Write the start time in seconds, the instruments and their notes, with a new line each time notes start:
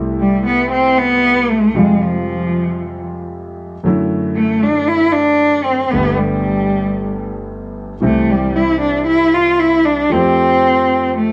Already playing: grand piano C2 C3 G3 A3 E4
0.20 cello G3
0.46 cello B3
0.71 cello C4
0.98 cello B3
1.50 cello A3
1.74 grand piano F2 C3 F3 G3 G#3 F4, cello G#3
2.04 cello F3
3.83 grand piano F#2 D3 F#3 A3
3.88 grand piano E4
4.36 cello A3
4.63 cello D4
4.88 cello E4
5.12 cello D4
5.64 cello C4
5.91 grand piano G1 G2 D3 A3 B3, cello B3
5.96 grand piano G4
6.17 cello G3
8.00 grand piano C2 C3 E3 G3 C4
8.04 cello A3, grand piano G4
8.31 cello G3
8.56 cello E4
8.82 cello D4
9.07 cello E4
9.34 cello F4
9.60 cello E4
9.85 cello D4
10.10 grand piano F2 F3 A3 C4, cello C4
10.14 grand piano G4
11.18 cello A3